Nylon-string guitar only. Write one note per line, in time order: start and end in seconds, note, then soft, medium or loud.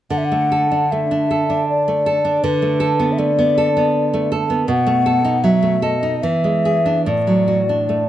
0.10 2.39 D3 soft
0.32 0.64 A3 soft
0.52 0.84 A4 soft
0.71 1.04 D4 soft
0.92 1.23 A3 soft
1.11 1.42 D4 soft
1.31 1.61 A4 soft
1.50 2.10 D4 soft
1.88 2.18 A3 soft
2.06 2.36 A4 soft
2.25 2.43 D4 soft
2.44 4.64 D3 medium
2.62 2.92 A3 soft
2.80 3.11 A4 soft
2.99 3.30 B3 soft
3.18 3.49 A3 soft
3.39 3.68 B3 soft
3.58 3.87 A4 soft
3.77 4.35 B3 soft
4.14 4.43 A3 soft
4.32 4.61 A4 soft
4.50 4.68 B3 soft
4.68 6.20 B2 medium
4.87 5.17 A3 soft
5.06 5.36 A4 soft
5.25 5.55 D#4 soft
5.44 5.75 F#3 soft
5.63 5.95 A3 soft
5.82 6.15 A4 soft
6.03 6.23 D#4 soft
6.23 7.05 E3 soft
6.44 6.78 G#3 soft
6.65 6.99 G#4 soft
6.86 7.07 D4 soft
7.06 8.09 A2 soft
7.27 7.61 F#3 soft
7.48 7.81 F#4 soft
7.69 8.02 D4 soft
7.89 8.09 A3 soft